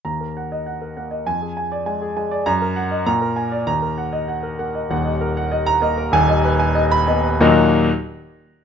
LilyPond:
<<
  \new Staff \with { instrumentName = "Grand piano" } { \time 2/4 \key ees \minor \tempo 4 = 98 << { bes''8 r4. | aes''8 r4. | bes''8 r8 bes''8 r8 | bes''8 r4. |
r4 r16 bes''8 r16 | r4 r16 ces'''8 r16 | <ees, bes, ges bes ees' ges'>8 r4. | } \\ { r16 bes'16 ges''16 ees''16 ges''16 bes'16 ges''16 ees''16 | r16 aes'16 aes''16 d''16 aes''16 aes'16 aes''16 d''16 | r16 bes'16 ges''16 ees''16 r16 bes'16 aes''16 d''16 | r16 bes'16 ges''16 ees''16 ges''16 bes'16 ges''16 ees''16 |
ges''16 ees''16 bes'16 ges''16 ees''8 ees''16 bes'16 | aes''16 ees''16 ces''16 aes''16 ees''8 ees''16 ces''16 | r2 | } >> }
  \new Staff \with { instrumentName = "Grand piano" } { \clef bass \time 2/4 \key ees \minor ees,4. bes8 | f,4 aes8 aes8 | ges,4 bes,4 | ees,4. bes8 |
<ees,, ees,>4. bes8 | <ees,, ees,>4. ces'8 | r2 | }
>>